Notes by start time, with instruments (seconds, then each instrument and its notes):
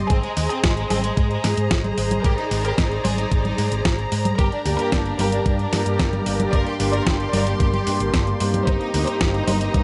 Already playing: string section D#5
0.10 fingered electric bass G#1, violin section C4 G#4, string section G#4 C5 A#5, kick, closed hi-hat
0.23 violin section G#3, closed hi-hat
0.37 fingered electric bass D#2, violin section G#3, open hi-hat
0.50 violin section C4 G#4, closed hi-hat
0.64 fingered electric bass G#1, violin section G#3, kick, snare, closed hi-hat
0.77 violin section G#3, closed hi-hat
0.90 fingered electric bass G#1, violin section C4 G#4, open hi-hat, high conga
1.04 violin section G#3, closed hi-hat
1.17 fingered electric bass G#2, violin section G#3, kick, closed hi-hat
1.31 violin section G#3, closed hi-hat
1.44 fingered electric bass G#2, snare, open hi-hat
1.57 fingered electric bass G#2, closed hi-hat
1.71 fingered electric bass G#1, kick, snare, closed hi-hat
1.84 closed hi-hat, high conga
1.97 fingered electric bass G#1, open hi-hat
2.11 closed hi-hat, high conga
2.24 fingered electric bass G#1, violin section G4 A#4, string section D5, kick, closed hi-hat
2.38 violin section D#4, closed hi-hat
2.51 fingered electric bass G#1, violin section D#4, open hi-hat
2.65 violin section G4 A#4, closed hi-hat
2.78 fingered electric bass G#1, violin section D#4, kick, snare, closed hi-hat
2.91 violin section D#4, closed hi-hat
3.05 fingered electric bass G#1, violin section G#4 C5, open hi-hat, high conga
3.18 violin section D#4, closed hi-hat
3.32 fingered electric bass G#1, violin section D#4, kick, closed hi-hat
3.45 violin section D#4, closed hi-hat, high conga
3.58 fingered electric bass G#2, open hi-hat
3.72 fingered electric bass G#1, closed hi-hat
3.85 kick, snare, closed hi-hat
3.99 closed hi-hat
4.12 fingered electric bass G#2, open hi-hat
4.25 closed hi-hat, high conga
4.39 fingered electric bass G1, violin section G4 A#4, string section G4 A#4 D5, kick, closed hi-hat
4.52 violin section D4, closed hi-hat
4.65 fingered electric bass D2, analog polysynth G2 G3 A#3 D4 G4, violin section D4, open hi-hat
4.79 violin section G4 A#4, closed hi-hat
4.92 fingered electric bass G1, violin section D4, kick, snare, closed hi-hat
5.06 violin section D4, closed hi-hat
5.19 fingered electric bass G1, analog polysynth G2 G3 A#3 D4 G4, violin section G4 A#4, open hi-hat, high conga
5.32 analog polysynth G2 G3 A#3 D4 G4, violin section D4, closed hi-hat
5.46 fingered electric bass G2, violin section D4, kick, closed hi-hat
5.59 violin section D4, closed hi-hat
5.73 analog polysynth G2 G3 A#3 D4 G4, fingered electric bass G2, snare, open hi-hat
5.86 fingered electric bass G2, closed hi-hat
5.99 fingered electric bass G1, kick, snare, closed hi-hat
6.13 closed hi-hat, high conga
6.26 fingered electric bass G1, analog polysynth G2 G3 A#3 D4 G4, open hi-hat
6.40 closed hi-hat, high conga
6.53 fingered electric bass G1, violin section A#4 D5, string section C6, kick, closed hi-hat
6.66 violin section G4, closed hi-hat
6.80 fingered electric bass G1, analog polysynth G2 G3 A#3 D4 G4, violin section G4, open hi-hat
6.93 violin section A#4 D5, closed hi-hat
7.06 fingered electric bass G1, violin section G4, kick, snare, closed hi-hat
7.20 violin section G4, closed hi-hat
7.33 fingered electric bass G1, analog polysynth G2 G3 A#3 D4 G4, violin section A#4 D5, open hi-hat, high conga
7.47 analog polysynth G2 G3 A#3 D4, violin section G4, closed hi-hat
7.60 fingered electric bass G1, violin section G4, kick, closed hi-hat
7.73 violin section G4, closed hi-hat, high conga
7.87 fingered electric bass G2, analog polysynth G2 G3 A#3 D4 G4, open hi-hat
8.00 fingered electric bass G1, closed hi-hat
8.14 fingered electric bass G1, kick, snare, closed hi-hat
8.27 closed hi-hat
8.40 analog polysynth G2 A#3 C4 D#4 G4, fingered electric bass G2, open hi-hat
8.54 closed hi-hat, high conga
8.67 fingered electric bass G1, violin section D#4 C5, string section C5 D#5 A#5, kick, closed hi-hat
8.80 violin section D#4, closed hi-hat
8.94 fingered electric bass D2, analog polysynth G2 A#3 C4 D#4 G4, violin section D#4, open hi-hat
9.07 violin section D#4 C5, closed hi-hat
9.21 fingered electric bass G1, violin section D#4, kick, snare, closed hi-hat
9.34 violin section D#4, closed hi-hat
9.47 fingered electric bass G1, analog polysynth G2 A#3 C4 D#4 G4, violin section D#4 C5, open hi-hat, high conga
9.61 analog polysynth G2 A#3 C4 D#4 G4, violin section D#4, closed hi-hat
9.74 fingered electric bass G2, violin section D#4, kick, closed hi-hat